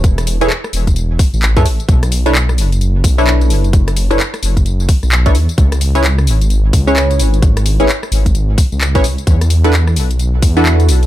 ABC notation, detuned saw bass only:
X:1
M:4/4
L:1/16
Q:"Swing 16ths" 1/4=130
K:Bdor
V:1 name="Detuned saw bass" clef=bass
E,,,4 z2 E,,,4 z A,,,2 A,, A,,, z | B,,,6 F,,,4 B,,,4 F,,,2- | F,,,4 z2 F,,,4 z B,,,3 E,, z | C,,6 G,,,4 C,,4 G,,,2- |
G,,,4 z2 G,,,4 z C,,2 G,,, C,, z | E,,6 B,,,4 E,,4 B,,,2 |]